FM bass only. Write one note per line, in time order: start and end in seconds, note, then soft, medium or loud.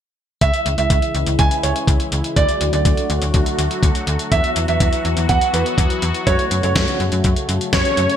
0.41 0.51 C#2 loud
0.66 0.76 C#2 medium
0.78 0.88 C#2 medium
0.90 1.00 C#2 loud
1.15 1.24 C#2 medium
1.27 1.37 C#2 medium
1.39 1.49 C#2 loud
1.63 1.73 C#2 medium
1.88 1.97 C#2 loud
2.12 2.22 C#2 medium
2.36 2.46 D2 loud
2.61 2.71 D2 medium
2.73 2.83 D2 loud
2.85 2.95 D2 medium
3.10 3.20 D2 loud
3.22 3.32 D2 medium
3.34 3.44 D2 loud
3.59 3.68 D2 medium
3.83 3.93 D2 loud
4.07 4.17 D2 loud
4.32 4.42 E2 loud
4.56 4.66 E2 loud
4.68 4.78 E2 medium
4.80 4.90 E2 loud
5.05 5.15 E2 medium
5.17 5.27 E2 medium
5.29 5.39 E2 loud
5.54 5.63 E2 loud
5.78 5.88 E2 loud
6.02 6.12 E2 loud
6.27 6.37 F#2 loud
6.51 6.61 F#2 loud
6.63 6.73 F#2 loud
6.75 6.85 F#2 loud
7.00 7.10 F#2 medium
7.12 7.22 F#2 loud
7.25 7.34 F#2 loud
7.49 7.59 F#2 medium
7.73 7.83 F#2 medium
7.97 8.07 F#2 medium